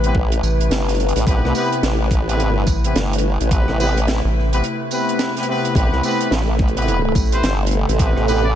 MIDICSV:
0, 0, Header, 1, 7, 480
1, 0, Start_track
1, 0, Key_signature, 0, "minor"
1, 0, Tempo, 560748
1, 1086, Time_signature, 4, 2, 24, 8
1, 7321, End_track
2, 0, Start_track
2, 0, Title_t, "Trumpet"
2, 0, Program_c, 0, 56
2, 6275, Note_on_c, 0, 72, 93
2, 6448, Note_off_c, 0, 72, 0
2, 7228, Note_on_c, 0, 74, 93
2, 7290, Note_off_c, 0, 74, 0
2, 7321, End_track
3, 0, Start_track
3, 0, Title_t, "Ambient pad"
3, 0, Program_c, 1, 92
3, 0, Note_on_c, 1, 48, 86
3, 0, Note_on_c, 1, 57, 78
3, 0, Note_on_c, 1, 64, 77
3, 0, Note_on_c, 1, 71, 92
3, 4921, Note_off_c, 1, 71, 0
3, 4923, Note_on_c, 1, 69, 96
3, 7321, Note_off_c, 1, 48, 0
3, 7321, Note_off_c, 1, 57, 0
3, 7321, Note_off_c, 1, 64, 0
3, 7321, Note_off_c, 1, 69, 0
3, 7321, End_track
4, 0, Start_track
4, 0, Title_t, "Horn section"
4, 0, Program_c, 2, 61
4, 33, Note_on_c, 2, 59, 87
4, 33, Note_on_c, 2, 60, 86
4, 33, Note_on_c, 2, 64, 80
4, 33, Note_on_c, 2, 67, 84
4, 33, Note_on_c, 2, 71, 95
4, 131, Note_off_c, 2, 59, 0
4, 131, Note_off_c, 2, 60, 0
4, 131, Note_off_c, 2, 64, 0
4, 131, Note_off_c, 2, 67, 0
4, 131, Note_off_c, 2, 71, 0
4, 1084, Note_on_c, 2, 60, 92
4, 1084, Note_on_c, 2, 64, 86
4, 1085, Note_on_c, 2, 59, 94
4, 1085, Note_on_c, 2, 67, 87
4, 1085, Note_on_c, 2, 71, 102
4, 1303, Note_off_c, 2, 59, 0
4, 1303, Note_off_c, 2, 60, 0
4, 1303, Note_off_c, 2, 64, 0
4, 1303, Note_off_c, 2, 67, 0
4, 1303, Note_off_c, 2, 71, 0
4, 1324, Note_on_c, 2, 60, 95
4, 1324, Note_on_c, 2, 64, 90
4, 1324, Note_on_c, 2, 67, 90
4, 1326, Note_on_c, 2, 59, 99
4, 1326, Note_on_c, 2, 71, 108
4, 1533, Note_off_c, 2, 60, 0
4, 1533, Note_off_c, 2, 64, 0
4, 1533, Note_off_c, 2, 67, 0
4, 1534, Note_off_c, 2, 59, 0
4, 1534, Note_off_c, 2, 71, 0
4, 1953, Note_on_c, 2, 64, 83
4, 1953, Note_on_c, 2, 67, 83
4, 1954, Note_on_c, 2, 59, 94
4, 1954, Note_on_c, 2, 60, 93
4, 1954, Note_on_c, 2, 71, 102
4, 2142, Note_off_c, 2, 59, 0
4, 2142, Note_off_c, 2, 64, 0
4, 2142, Note_off_c, 2, 67, 0
4, 2142, Note_off_c, 2, 71, 0
4, 2143, Note_off_c, 2, 60, 0
4, 2429, Note_on_c, 2, 64, 81
4, 2430, Note_on_c, 2, 59, 83
4, 2430, Note_on_c, 2, 60, 83
4, 2430, Note_on_c, 2, 67, 75
4, 2430, Note_on_c, 2, 71, 91
4, 2529, Note_off_c, 2, 60, 0
4, 2529, Note_off_c, 2, 64, 0
4, 2530, Note_off_c, 2, 59, 0
4, 2530, Note_off_c, 2, 67, 0
4, 2530, Note_off_c, 2, 71, 0
4, 3005, Note_on_c, 2, 67, 74
4, 3006, Note_on_c, 2, 59, 82
4, 3006, Note_on_c, 2, 60, 78
4, 3006, Note_on_c, 2, 64, 72
4, 3006, Note_on_c, 2, 71, 89
4, 3223, Note_off_c, 2, 67, 0
4, 3224, Note_off_c, 2, 59, 0
4, 3224, Note_off_c, 2, 60, 0
4, 3224, Note_off_c, 2, 64, 0
4, 3224, Note_off_c, 2, 71, 0
4, 3242, Note_on_c, 2, 60, 99
4, 3243, Note_on_c, 2, 59, 100
4, 3243, Note_on_c, 2, 64, 93
4, 3243, Note_on_c, 2, 67, 88
4, 3243, Note_on_c, 2, 71, 108
4, 3394, Note_off_c, 2, 60, 0
4, 3395, Note_off_c, 2, 59, 0
4, 3395, Note_off_c, 2, 64, 0
4, 3395, Note_off_c, 2, 67, 0
4, 3395, Note_off_c, 2, 71, 0
4, 3871, Note_on_c, 2, 59, 93
4, 3871, Note_on_c, 2, 64, 81
4, 3871, Note_on_c, 2, 71, 101
4, 3872, Note_on_c, 2, 60, 93
4, 3872, Note_on_c, 2, 67, 80
4, 3970, Note_off_c, 2, 59, 0
4, 3970, Note_off_c, 2, 60, 0
4, 3970, Note_off_c, 2, 64, 0
4, 3970, Note_off_c, 2, 71, 0
4, 3971, Note_off_c, 2, 67, 0
4, 4204, Note_on_c, 2, 60, 82
4, 4204, Note_on_c, 2, 64, 73
4, 4205, Note_on_c, 2, 59, 81
4, 4205, Note_on_c, 2, 67, 71
4, 4205, Note_on_c, 2, 71, 88
4, 4557, Note_off_c, 2, 59, 0
4, 4557, Note_off_c, 2, 60, 0
4, 4557, Note_off_c, 2, 64, 0
4, 4557, Note_off_c, 2, 67, 0
4, 4557, Note_off_c, 2, 71, 0
4, 4591, Note_on_c, 2, 64, 72
4, 4591, Note_on_c, 2, 67, 71
4, 4592, Note_on_c, 2, 59, 78
4, 4592, Note_on_c, 2, 60, 78
4, 4592, Note_on_c, 2, 71, 85
4, 4671, Note_off_c, 2, 64, 0
4, 4671, Note_off_c, 2, 67, 0
4, 4672, Note_off_c, 2, 59, 0
4, 4672, Note_off_c, 2, 60, 0
4, 4672, Note_off_c, 2, 71, 0
4, 4683, Note_on_c, 2, 59, 98
4, 4683, Note_on_c, 2, 60, 98
4, 4683, Note_on_c, 2, 64, 89
4, 4683, Note_on_c, 2, 67, 87
4, 4683, Note_on_c, 2, 71, 107
4, 4892, Note_off_c, 2, 60, 0
4, 4892, Note_off_c, 2, 67, 0
4, 4893, Note_off_c, 2, 59, 0
4, 4893, Note_off_c, 2, 64, 0
4, 4893, Note_off_c, 2, 71, 0
4, 4925, Note_on_c, 2, 59, 92
4, 4925, Note_on_c, 2, 60, 92
4, 4925, Note_on_c, 2, 64, 84
4, 4925, Note_on_c, 2, 67, 86
4, 4925, Note_on_c, 2, 71, 100
4, 5143, Note_off_c, 2, 59, 0
4, 5143, Note_off_c, 2, 60, 0
4, 5143, Note_off_c, 2, 64, 0
4, 5143, Note_off_c, 2, 67, 0
4, 5143, Note_off_c, 2, 71, 0
4, 5166, Note_on_c, 2, 59, 99
4, 5166, Note_on_c, 2, 60, 97
4, 5166, Note_on_c, 2, 64, 89
4, 5166, Note_on_c, 2, 67, 88
4, 5166, Note_on_c, 2, 71, 108
4, 5374, Note_off_c, 2, 59, 0
4, 5374, Note_off_c, 2, 60, 0
4, 5374, Note_off_c, 2, 64, 0
4, 5374, Note_off_c, 2, 67, 0
4, 5374, Note_off_c, 2, 71, 0
4, 5790, Note_on_c, 2, 59, 93
4, 5790, Note_on_c, 2, 60, 87
4, 5790, Note_on_c, 2, 71, 101
4, 5791, Note_on_c, 2, 64, 84
4, 5791, Note_on_c, 2, 67, 85
4, 5981, Note_off_c, 2, 59, 0
4, 5981, Note_off_c, 2, 60, 0
4, 5981, Note_off_c, 2, 64, 0
4, 5981, Note_off_c, 2, 67, 0
4, 5981, Note_off_c, 2, 71, 0
4, 6270, Note_on_c, 2, 59, 84
4, 6270, Note_on_c, 2, 60, 83
4, 6270, Note_on_c, 2, 64, 80
4, 6270, Note_on_c, 2, 67, 77
4, 6270, Note_on_c, 2, 71, 91
4, 6369, Note_off_c, 2, 59, 0
4, 6369, Note_off_c, 2, 60, 0
4, 6369, Note_off_c, 2, 71, 0
4, 6370, Note_off_c, 2, 64, 0
4, 6370, Note_off_c, 2, 67, 0
4, 6845, Note_on_c, 2, 64, 73
4, 6845, Note_on_c, 2, 67, 75
4, 6846, Note_on_c, 2, 59, 80
4, 6846, Note_on_c, 2, 60, 82
4, 6846, Note_on_c, 2, 71, 86
4, 7063, Note_off_c, 2, 64, 0
4, 7064, Note_off_c, 2, 59, 0
4, 7064, Note_off_c, 2, 60, 0
4, 7064, Note_off_c, 2, 67, 0
4, 7064, Note_off_c, 2, 71, 0
4, 7085, Note_on_c, 2, 60, 98
4, 7085, Note_on_c, 2, 64, 90
4, 7086, Note_on_c, 2, 59, 101
4, 7086, Note_on_c, 2, 71, 110
4, 7087, Note_on_c, 2, 67, 94
4, 7236, Note_off_c, 2, 59, 0
4, 7236, Note_off_c, 2, 60, 0
4, 7236, Note_off_c, 2, 64, 0
4, 7236, Note_off_c, 2, 71, 0
4, 7237, Note_off_c, 2, 67, 0
4, 7321, End_track
5, 0, Start_track
5, 0, Title_t, "Analog synth bass"
5, 0, Program_c, 3, 38
5, 0, Note_on_c, 3, 33, 100
5, 113, Note_off_c, 3, 33, 0
5, 366, Note_on_c, 3, 33, 92
5, 591, Note_off_c, 3, 33, 0
5, 2285, Note_on_c, 3, 33, 94
5, 2511, Note_off_c, 3, 33, 0
5, 3634, Note_on_c, 3, 33, 100
5, 3952, Note_off_c, 3, 33, 0
5, 6122, Note_on_c, 3, 33, 95
5, 6349, Note_off_c, 3, 33, 0
5, 7321, End_track
6, 0, Start_track
6, 0, Title_t, "Wobble bass"
6, 0, Program_c, 4, 39
6, 125, Note_on_c, 4, 33, 98
6, 351, Note_off_c, 4, 33, 0
6, 604, Note_on_c, 4, 31, 102
6, 969, Note_off_c, 4, 31, 0
6, 992, Note_on_c, 4, 33, 96
6, 1071, Note_off_c, 4, 33, 0
6, 1086, Note_on_c, 4, 33, 101
6, 1210, Note_off_c, 4, 33, 0
6, 1233, Note_on_c, 4, 36, 99
6, 1311, Note_off_c, 4, 36, 0
6, 1565, Note_on_c, 4, 33, 102
6, 2062, Note_off_c, 4, 33, 0
6, 2062, Note_on_c, 4, 32, 102
6, 2271, Note_off_c, 4, 32, 0
6, 2528, Note_on_c, 4, 31, 100
6, 2891, Note_off_c, 4, 31, 0
6, 2916, Note_on_c, 4, 33, 93
6, 3131, Note_off_c, 4, 33, 0
6, 3152, Note_on_c, 4, 33, 99
6, 3609, Note_off_c, 4, 33, 0
6, 4925, Note_on_c, 4, 33, 99
6, 5049, Note_off_c, 4, 33, 0
6, 5070, Note_on_c, 4, 36, 101
6, 5149, Note_off_c, 4, 36, 0
6, 5402, Note_on_c, 4, 33, 102
6, 6109, Note_off_c, 4, 33, 0
6, 6363, Note_on_c, 4, 31, 100
6, 6728, Note_off_c, 4, 31, 0
6, 6751, Note_on_c, 4, 33, 98
6, 6968, Note_off_c, 4, 33, 0
6, 6994, Note_on_c, 4, 33, 96
6, 7321, Note_off_c, 4, 33, 0
6, 7321, End_track
7, 0, Start_track
7, 0, Title_t, "Drums"
7, 31, Note_on_c, 9, 42, 62
7, 117, Note_off_c, 9, 42, 0
7, 126, Note_on_c, 9, 36, 101
7, 211, Note_off_c, 9, 36, 0
7, 273, Note_on_c, 9, 42, 74
7, 358, Note_off_c, 9, 42, 0
7, 371, Note_on_c, 9, 54, 64
7, 373, Note_on_c, 9, 42, 50
7, 456, Note_off_c, 9, 54, 0
7, 459, Note_off_c, 9, 42, 0
7, 518, Note_on_c, 9, 42, 59
7, 604, Note_off_c, 9, 42, 0
7, 610, Note_on_c, 9, 42, 76
7, 613, Note_on_c, 9, 38, 121
7, 695, Note_off_c, 9, 42, 0
7, 699, Note_off_c, 9, 38, 0
7, 755, Note_on_c, 9, 38, 33
7, 761, Note_on_c, 9, 42, 60
7, 810, Note_off_c, 9, 42, 0
7, 810, Note_on_c, 9, 42, 35
7, 840, Note_off_c, 9, 38, 0
7, 855, Note_off_c, 9, 42, 0
7, 855, Note_on_c, 9, 42, 45
7, 929, Note_off_c, 9, 42, 0
7, 929, Note_on_c, 9, 42, 54
7, 992, Note_off_c, 9, 42, 0
7, 992, Note_on_c, 9, 42, 70
7, 1003, Note_off_c, 9, 42, 0
7, 1003, Note_on_c, 9, 42, 67
7, 1085, Note_on_c, 9, 36, 124
7, 1088, Note_off_c, 9, 42, 0
7, 1091, Note_on_c, 9, 42, 80
7, 1170, Note_off_c, 9, 36, 0
7, 1177, Note_off_c, 9, 42, 0
7, 1243, Note_on_c, 9, 37, 58
7, 1325, Note_on_c, 9, 54, 62
7, 1327, Note_on_c, 9, 42, 51
7, 1329, Note_off_c, 9, 37, 0
7, 1410, Note_off_c, 9, 54, 0
7, 1412, Note_off_c, 9, 42, 0
7, 1476, Note_on_c, 9, 42, 65
7, 1562, Note_off_c, 9, 42, 0
7, 1568, Note_on_c, 9, 38, 105
7, 1569, Note_on_c, 9, 42, 76
7, 1654, Note_off_c, 9, 38, 0
7, 1655, Note_off_c, 9, 42, 0
7, 1805, Note_on_c, 9, 36, 100
7, 1805, Note_on_c, 9, 37, 39
7, 1810, Note_on_c, 9, 42, 58
7, 1890, Note_off_c, 9, 36, 0
7, 1890, Note_off_c, 9, 37, 0
7, 1895, Note_off_c, 9, 42, 0
7, 1961, Note_on_c, 9, 42, 70
7, 2046, Note_off_c, 9, 42, 0
7, 2053, Note_on_c, 9, 42, 77
7, 2139, Note_off_c, 9, 42, 0
7, 2282, Note_on_c, 9, 54, 72
7, 2285, Note_on_c, 9, 36, 99
7, 2288, Note_on_c, 9, 42, 53
7, 2368, Note_off_c, 9, 54, 0
7, 2370, Note_off_c, 9, 36, 0
7, 2374, Note_off_c, 9, 42, 0
7, 2434, Note_on_c, 9, 42, 64
7, 2519, Note_off_c, 9, 42, 0
7, 2530, Note_on_c, 9, 42, 77
7, 2535, Note_on_c, 9, 38, 119
7, 2616, Note_off_c, 9, 42, 0
7, 2620, Note_off_c, 9, 38, 0
7, 2681, Note_on_c, 9, 42, 61
7, 2724, Note_off_c, 9, 42, 0
7, 2724, Note_on_c, 9, 42, 85
7, 2810, Note_off_c, 9, 42, 0
7, 2915, Note_on_c, 9, 42, 66
7, 3001, Note_off_c, 9, 42, 0
7, 3005, Note_on_c, 9, 36, 122
7, 3007, Note_on_c, 9, 42, 75
7, 3091, Note_off_c, 9, 36, 0
7, 3093, Note_off_c, 9, 42, 0
7, 3151, Note_on_c, 9, 37, 60
7, 3237, Note_off_c, 9, 37, 0
7, 3253, Note_on_c, 9, 42, 57
7, 3253, Note_on_c, 9, 54, 61
7, 3339, Note_off_c, 9, 42, 0
7, 3339, Note_off_c, 9, 54, 0
7, 3402, Note_on_c, 9, 42, 75
7, 3488, Note_off_c, 9, 42, 0
7, 3491, Note_on_c, 9, 42, 77
7, 3495, Note_on_c, 9, 38, 123
7, 3577, Note_off_c, 9, 42, 0
7, 3580, Note_off_c, 9, 38, 0
7, 3761, Note_on_c, 9, 37, 31
7, 3800, Note_off_c, 9, 37, 0
7, 3800, Note_on_c, 9, 37, 26
7, 3837, Note_off_c, 9, 37, 0
7, 3837, Note_on_c, 9, 37, 20
7, 3873, Note_off_c, 9, 37, 0
7, 3873, Note_on_c, 9, 37, 17
7, 3877, Note_on_c, 9, 42, 70
7, 3922, Note_off_c, 9, 37, 0
7, 3922, Note_on_c, 9, 37, 12
7, 3944, Note_off_c, 9, 37, 0
7, 3944, Note_on_c, 9, 37, 10
7, 3962, Note_off_c, 9, 42, 0
7, 3968, Note_on_c, 9, 42, 82
7, 4030, Note_off_c, 9, 37, 0
7, 4054, Note_off_c, 9, 42, 0
7, 4202, Note_on_c, 9, 42, 53
7, 4207, Note_on_c, 9, 54, 67
7, 4287, Note_off_c, 9, 42, 0
7, 4293, Note_off_c, 9, 54, 0
7, 4356, Note_on_c, 9, 42, 61
7, 4442, Note_off_c, 9, 42, 0
7, 4443, Note_on_c, 9, 42, 85
7, 4444, Note_on_c, 9, 38, 107
7, 4529, Note_off_c, 9, 42, 0
7, 4530, Note_off_c, 9, 38, 0
7, 4594, Note_on_c, 9, 42, 64
7, 4599, Note_on_c, 9, 38, 34
7, 4646, Note_off_c, 9, 42, 0
7, 4646, Note_on_c, 9, 42, 77
7, 4684, Note_off_c, 9, 38, 0
7, 4732, Note_off_c, 9, 42, 0
7, 4835, Note_on_c, 9, 42, 72
7, 4921, Note_off_c, 9, 42, 0
7, 4923, Note_on_c, 9, 36, 127
7, 4932, Note_on_c, 9, 42, 83
7, 5009, Note_off_c, 9, 36, 0
7, 5018, Note_off_c, 9, 42, 0
7, 5075, Note_on_c, 9, 37, 53
7, 5160, Note_off_c, 9, 37, 0
7, 5165, Note_on_c, 9, 42, 61
7, 5170, Note_on_c, 9, 54, 65
7, 5250, Note_off_c, 9, 42, 0
7, 5255, Note_off_c, 9, 54, 0
7, 5311, Note_on_c, 9, 42, 68
7, 5397, Note_off_c, 9, 42, 0
7, 5411, Note_on_c, 9, 42, 85
7, 5412, Note_on_c, 9, 38, 127
7, 5497, Note_off_c, 9, 38, 0
7, 5497, Note_off_c, 9, 42, 0
7, 5642, Note_on_c, 9, 36, 109
7, 5645, Note_on_c, 9, 42, 22
7, 5647, Note_on_c, 9, 37, 40
7, 5719, Note_off_c, 9, 42, 0
7, 5719, Note_on_c, 9, 42, 30
7, 5728, Note_off_c, 9, 36, 0
7, 5732, Note_off_c, 9, 37, 0
7, 5794, Note_off_c, 9, 42, 0
7, 5794, Note_on_c, 9, 42, 73
7, 5837, Note_off_c, 9, 42, 0
7, 5837, Note_on_c, 9, 42, 42
7, 5891, Note_off_c, 9, 42, 0
7, 5891, Note_on_c, 9, 42, 86
7, 5977, Note_off_c, 9, 42, 0
7, 6122, Note_on_c, 9, 36, 108
7, 6124, Note_on_c, 9, 42, 53
7, 6128, Note_on_c, 9, 54, 64
7, 6208, Note_off_c, 9, 36, 0
7, 6210, Note_off_c, 9, 42, 0
7, 6214, Note_off_c, 9, 54, 0
7, 6268, Note_on_c, 9, 42, 66
7, 6354, Note_off_c, 9, 42, 0
7, 6364, Note_on_c, 9, 42, 80
7, 6366, Note_on_c, 9, 38, 111
7, 6449, Note_off_c, 9, 42, 0
7, 6452, Note_off_c, 9, 38, 0
7, 6562, Note_on_c, 9, 42, 81
7, 6601, Note_off_c, 9, 42, 0
7, 6601, Note_on_c, 9, 42, 66
7, 6687, Note_off_c, 9, 42, 0
7, 6754, Note_on_c, 9, 42, 68
7, 6839, Note_off_c, 9, 42, 0
7, 6843, Note_on_c, 9, 36, 127
7, 6844, Note_on_c, 9, 42, 78
7, 6928, Note_off_c, 9, 36, 0
7, 6929, Note_off_c, 9, 42, 0
7, 6990, Note_on_c, 9, 37, 49
7, 7076, Note_off_c, 9, 37, 0
7, 7088, Note_on_c, 9, 54, 61
7, 7093, Note_on_c, 9, 42, 52
7, 7174, Note_off_c, 9, 54, 0
7, 7178, Note_off_c, 9, 42, 0
7, 7321, End_track
0, 0, End_of_file